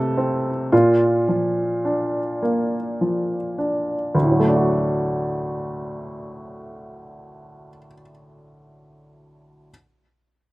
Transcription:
upright piano
Already playing: F2 C3 A3 C4 A4
0.17 C4
0.72 A#2 F4
1.28 F3
1.85 D4
2.42 A#3
3.01 F3
3.58 D4
4.15 D2
4.23 A2
4.31 F#3
4.40 A3
4.48 D4
4.56 F#4

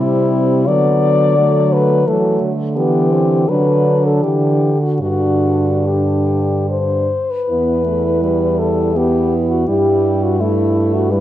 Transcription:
french horn
Already playing: C3 G3 C4 E4
0.67 D3 F#3 B3 D5
1.38 F#3 A3
1.73 B4
2.05 E3 F#3 A3 A4
2.41 D3
2.76 E3 B3 G4
3.11 C4
3.48 D3 F#3 D4 B4
4.06 A4
4.23 D3 E3 G4
4.82 F#4
5.01 G2 D3 D4 F#4
5.86 G4
6.70 C5
7.31 B4
7.49 E2 B3 E4
7.86 A3
8.23 G3
8.59 A4
8.96 B3 E4 G4
9.51 F#4
9.67 G2 G3 E4 G4
10.24 F#4
10.40 A3 E4
10.95 F#4
11.11 G3 E4 B4

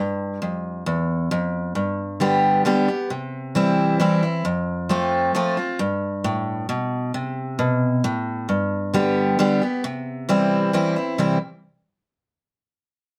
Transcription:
steel-string acoustic guitar
Already playing: G2
0.42 F2
0.86 E2
1.31 F2
1.75 G2
2.20 D3 G3 B3 G4
2.65 D3 G3 B3 G4
2.88 B3 G4
3.10 C3
3.55 E3 G3 C4 E4
4.00 E3 G3 C4 E4
4.23 C4 E4
4.45 F2
4.89 F3 A3 C4 F4
5.35 F3 A3 C4 F4
5.57 C4 F4
5.79 G2
6.24 A2
6.69 B2
7.14 C3
7.59 B2
8.04 A2
8.49 G2
8.94 D3 G3 B3 G4
9.39 D3 G3 B3 G4
9.62 B3 G4
9.84 C3
10.29 E3 G3 C4 E4
10.73 E3 G3 C4 E4
10.96 C4 E4
11.18 C3 E3 G3 C4 E4

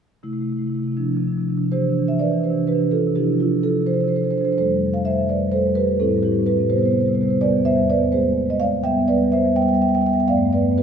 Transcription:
marimba
0.23 C3 A3 E4
0.31 C3 A3 E4
0.39 C3 A3 E4
0.48 A3 E4
0.52 C3
0.57 A3 E4
0.62 C3
0.66 C3 A3 E4
0.74 A3 E4
0.79 C3
0.84 A3 E4
0.88 C3 E4
0.97 C3 F3 D4
1.04 C3 F3 D4
1.12 F3 D4
1.17 C3 D4
1.24 C3 F3 D4
1.33 F3 D4
1.38 C3 F3 D4
1.48 C3 F3 D4
1.56 C3 F3 D4
1.64 D4
1.72 C3 E3 D4 G4 C5
1.80 C3 E3 D4
1.89 C3 E3 D4
1.98 E3 D4
2.02 C3 D4
2.08 E3 E5
2.12 C3 D4
2.16 E3 D5
2.21 C3 D4 B4
2.25 E3
2.32 C3 E3 D4
2.40 C3 E3 D4 C5
2.45 G4
2.49 C3 E3 D4
2.57 C3 D4
2.62 E3
2.66 C3 D4 G4 B4
2.71 E3 D4
2.80 C3 E3 D4
2.89 C3 E3 D4 F4 A4
2.98 C3 E3 D4
3.07 C3
3.15 C3 F3 D4 E4 G4
3.23 C3 F3 D4
3.30 C3 F3 D4
3.40 C3 F3 D4 F4
3.51 C3 F3
3.60 C3 F3 A4
3.64 F4
3.69 C3 F3
3.77 C3 F3
3.86 C3 F3 D4 A4 C5
3.94 C3 F3 D4 A4 C5
4.01 C3 D4 A4 C5
4.05 F3 A4 C5
4.09 C3 D4
4.14 F3 D4 A4 C5
4.21 C3 F3 D4 A4 C5
4.31 C3 F3 D4 A4 C5
4.38 C3 F3 D4 A4 C5
4.45 C3 D4 A4 C5
4.51 F3 C5
4.58 F2 G3 A3 A4 C5
4.66 F2 G3 A3
4.74 F2 G3 A3
4.82 G3 A3
4.87 F2 A3
4.94 F2 G3 F5
4.98 A3
5.03 F2 G3 A3 C5 E5
5.12 G3 A3
5.17 F2
5.21 G3 A3
5.26 F2 D5
5.30 G3 A3 B4
5.36 F2 G3
5.41 A3
5.46 F2 G3 A3
5.52 A4 C5
5.57 F2 G3 A3
5.66 F2 G3 A3
5.74 F2 G3 A3 G4 B4
5.83 F2 G3 A3
5.91 G3 A3
6.00 A2 G3 C4 E4 A4
6.08 A2 G3 C4
6.16 A2 G3 C4
6.23 G3 C4 E4 G4
6.29 A2 G3
6.34 C4
6.39 A2 G3
6.43 C4 B4
6.47 A2 G3 G4
6.51 C4
6.57 A2 G3 C4
6.64 G3
6.69 C3 G3 B3 G4 C5
6.76 C3 G3 B3 G4 C5
6.83 G3 B3 G4 C5
6.89 C3 G4 C5
6.95 C3 G3 B3 G4
7.00 B3 C5
7.05 G3 G4 C5
7.09 C3 B3
7.13 G3 G4 C5
7.18 C3 G3 B3 G4
7.23 C5
7.28 C3 G3 B3 G4 C5
7.41 E2 G3 B3 B4 D5
7.49 E2 G3 B3
7.57 G3 B3
7.65 E2 G3 B3 C5 E5
7.73 E2 G3 B3
7.82 G3 B3
7.88 E2 B3 B4 D5
7.93 G3
7.99 E2 B3
8.12 E2 G#3 A#3 G#4 C5
8.20 E2 G#3 A#3
8.28 E2 G#3 A#3
8.37 E2 G#3 A#3
8.46 E2 G#3 A#3 D#5
8.55 G#3 A#3
8.60 E2 G#3 A#3 D5 F5
8.69 E2 G#3 A#3
8.83 E2 G3 B3 E5 G5
8.91 E2 G3 B3
9.00 E2 G3 B3
9.07 G3 B3 B4 D5
9.13 E2 B3
9.17 G3
9.23 E2 B3
9.28 G3 B3
9.32 E2 G3 C5 E5
9.38 B3
9.44 E2 G3 B3
9.56 E2 G3 B3 E5 G5
9.62 G3 B3 E5 G5
9.66 E2 E5 G5
9.73 G3 B3 E5 G5
9.77 E2
9.81 G3 B3 E5 G5
9.88 E2 G3 B3 E5 G5
9.95 E2 G3 E5 G5
9.99 B3 E5 G5
10.06 E2 G3 B3 E5 G5
10.13 E2 G3 E5 G5
10.19 B3 G5
10.28 G2 A3 B3 D5 F5
10.36 G2 A3 B3
10.43 A3 B3
10.49 G2 B3 D5
10.53 A3 B4
10.57 G2 B3
10.62 A3 B3
10.70 G2 A3 B3
10.78 A3 G4 B4

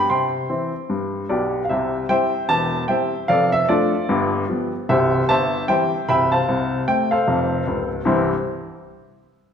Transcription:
upright piano
0.10 C3 G5 C6
0.50 E3 C4 E4
0.89 G2
1.29 B1 B2 G4 D5
1.65 F5
1.69 C2 C3 G4 C5 E5
2.09 G3 C4 E4 C5 E5 G5
2.49 E1 E2 A5
2.88 G3 C4 E4 C5 E5 G5
3.28 F1 F2 A4 D5 F5
3.52 E5
3.69 F3 A3 D4 F4 A4 D5
4.09 G1 G2
4.49 F3 G3 B3
4.89 C1 C2 G4 C5 E5
5.29 G1 C5 E5 A5
5.68 E3 G3 C4 C5 E5 G5
6.09 C1 C2 E5 G5 B5
6.32 C5 F5 A5
6.48 C2 C3
6.88 C3 A3 C4 G5
7.11 A4 C5 F5
7.27 F1 F2
7.67 C#1 C#2
8.05 C2 G2 E3 G3 C4 E4 C5

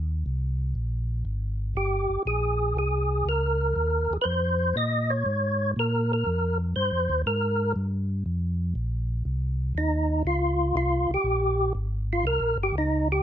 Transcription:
tonewheel organ
Already playing: D#2
0.26 C2
0.75 A#1
1.25 G#1
1.75 G1 G4
2.10 G1
2.25 A#1 G#4
2.75 C2 G#4
3.25 C#2 A#4
3.76 D#2
4.10 D#2 G#4
4.22 F2 B4 C5
4.76 A#2 D#5
5.10 C#5
5.26 G#2
5.76 A#2 A#4
6.13 A#4
6.26 F2
6.76 G2 C5
6.92 F2
7.09 D#2
7.26 G#2 A#4
7.76 G2
8.26 F2
8.75 A#1
9.25 C2
9.75 D#2 D#4
10.25 C#2 F4
10.75 C2 F4
11.09 C2
11.14 G4
11.24 A#1
11.75 G#1
12.13 F4
12.23 C2 A#4
12.40 A#1
12.56 G1
12.63 G4
12.72 C#2
12.78 D#4
13.12 G4

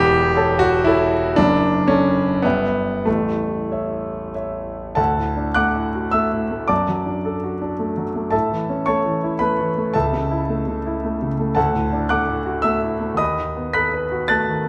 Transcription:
grand piano
Already playing: E1 E2 G4
0.36 A4 C#5 A5
0.59 F#4
0.84 E4 A4 C#5 A5
1.36 F#1 F#2 D4
1.88 C#4 A4 D5 A5
2.42 G1 G2 B3 D5 E5 G5
3.05 A0 A1 A3
3.72 C#5 E5
4.35 C#5 E5
4.95 D2 A4 F#5 A5
5.17 A2
5.37 D4
5.54 A3 F#5 D6 F#6
5.75 A2
5.95 F#4
6.11 A3 E5 E6
6.32 A2
6.51 A3
6.68 F#2 D5 A5 D6
6.89 F#3
7.06 D4
7.25 A4
7.44 F#4
7.62 D4
7.79 A3
7.97 F#3
8.16 A3
8.31 A2 A4 E5 A5
8.52 E3
8.70 C#4
8.86 A3 C#5 A5 C#6
9.05 E3
9.24 E4
9.39 A3 B4 B5
9.60 E3
9.77 A3
9.94 C#2 A4 E5 A5
10.13 C#3
10.31 E4
10.49 A3
10.67 C#3
10.86 E4
11.04 A3
11.22 C#3
11.39 A3
11.55 D2 A4 F#5 A5
11.74 A2
11.93 D4
12.09 A3 F#5 D6 F#6
12.28 A2
12.46 F#4
12.62 A3 E5 E6
12.82 A2
13.00 A3
13.14 D#2 D#5 D#6
13.19 B5
13.38 D#3
13.57 B3
13.73 A4 B5 F#6 B6
13.93 B4
14.12 F#4
14.28 A3 A5 F#6 A6
14.48 D#3

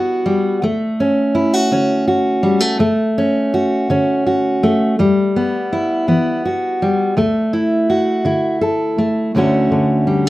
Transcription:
steel-string acoustic guitar
Already playing: E3 G3 B3 F#4
0.26 G3
0.62 D2 A3
1.00 C#4
1.35 E4
1.54 F#4
1.72 D3 C#4
2.08 F#4
2.43 G3
2.60 A3
2.79 D2 A3
3.18 C#4
3.54 F#4
3.90 D3 C#4
4.27 F#4
4.63 A3
4.99 E2 G3
5.36 B3
5.73 E4
6.08 E3 B3
6.45 F#4
6.82 G3
7.17 D2 A3
7.53 E4
7.90 F#4
8.25 D3 E4
8.61 A4
8.98 A3
9.35 D2 D3 A3 C#4 F#4
9.72 D3
10.07 G3

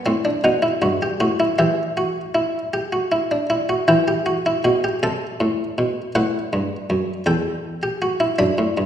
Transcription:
harpsichord
Already playing: A5
0.06 A2 C4
0.25 D4
0.44 B2 D#4 F#5
0.62 E4
0.82 G2 F#4
1.02 G4
1.20 A2 F#4
1.40 E4
1.59 E3 G4 E5
1.97 F#4
2.35 E4
2.74 G4
2.93 F#4
3.12 E4
3.31 D4
3.50 E4
3.69 F#4
3.88 E3 E4 G5
4.08 G4
4.26 F#4
4.46 E4
4.64 B2 F#4
4.84 G4
5.03 C3 A4 A5
5.40 A2
5.78 B2
6.15 A2 B4 F#5
6.53 G2
6.90 F#2
7.26 E2 A4 G5
7.83 G4
8.02 F#4
8.20 E4
8.39 F#2 D4 B5
8.58 A2
8.77 G2

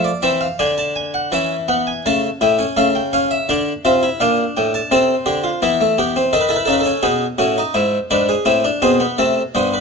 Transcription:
harpsichord
0.04 D5
0.22 E3 C4 E5
0.41 F5
0.59 D3 D4 G#5
0.78 A5
0.96 G#5
1.14 F#5
1.32 E3 C#4 E5
1.68 B3 F#5
1.87 G#5
2.06 C#3 A3 A5
2.41 A2 E4 G5
2.59 C#4
2.77 C#3 A3 F5
2.95 G5
3.13 C#4 F5
3.31 E5
3.49 D3 D4 D5
3.85 C3 F4 E5
4.03 E4
4.20 A#2 D4 F5
4.57 A2 G5
4.74 A5
4.91 C3 C4 A4
5.26 D3 G4
5.44 F4
5.62 E3 B3 E4
5.81 A3
5.98 B3 G4
6.16 C4
6.33 D#3 D#4 A4
6.41 B4
6.49 E4 A4
6.56 B4
6.65 C#3 D#4 A4
6.72 B4
6.80 A4
6.86 C#4
7.03 B2 B3 G#4
7.38 A2 C#4 F#4
7.58 D#4
7.74 G#2 E4
8.11 G#2 D4 B4
8.29 G#4
8.45 A2 C4 E4
8.64 D4
8.82 B2 C4 G#4
9.00 B3
9.18 C3 A3 A4
9.55 G2 B3 C5
9.74 B4

